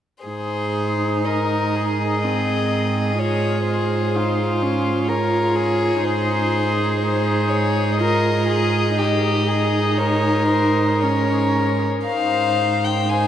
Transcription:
0.24 G#2 D#4 G#4 C5
1.25 A#4 D#5
1.75 G#4
2.21 C4 D#5
3.19 F4 G#4 C#5
3.67 C5
4.15 D#4 F4
4.62 C#4
5.08 F4 A#4 C#5
5.56 G#4
6.04 G#2 D#4 G#4 C5
7.01 C5
7.49 C#5
7.97 F4 A#4 D#5
8.48 G#4
8.96 D#4 G4 D#5
9.48 G#4
9.98 A#4 C#5
10.48 C5
11.00 C#4 A#4 C#5
12.06 G#2 D#4 C5 F5
12.84 G5
13.09 D#4 C5 G#5

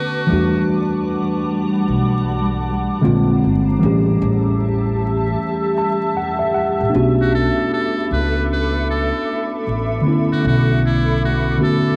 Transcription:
Already playing: D3 A3 B3 C#4 F#4 B4 A5 C#6 D6
0.27 E3 G3 A3
0.31 E2 G3 D4 F#4 F#5
1.88 B1
3.01 A#1 D3 G#3 A#3 C4 F4
3.44 G1
3.79 E3 G3 A3 G4 E5 A5 E6
3.83 A1 C#4 G4
4.22 A1
5.78 A5
6.17 F#5
6.39 E5
6.54 F#5
6.81 A1
6.90 A3 B3 D4
6.94 B1 C#4 F#4 A4 B5 D6
7.21 F#4
7.35 A4
7.73 A4
8.11 C#2 B4
8.53 B4
8.91 A4
9.67 A1
10.02 D3 A3 B3
10.07 C#4 E4
10.33 F#4
10.45 B1 F#4
10.86 E4
11.25 F#4
11.58 D3 A3 B3 C#4 F#4
11.64 A4

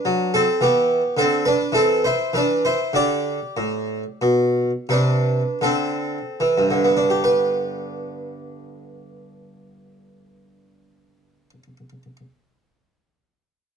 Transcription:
Already playing: D4 B4
0.05 F#3
0.34 C4 A4
0.61 E3 B3 G4
1.17 D3 C4 A4
1.45 D4 B4
1.72 E3 C4 A4
2.04 E4 C5
2.33 E3 D4 B4
2.65 E4 C5
2.93 D3 G4 D5
3.57 A2
4.22 B2
4.89 C3 D4 B4
5.61 D3 C4 A4
6.40 E3
6.58 G2
6.71 D3
6.84 B3
6.97 D4
7.10 G4
7.24 B4

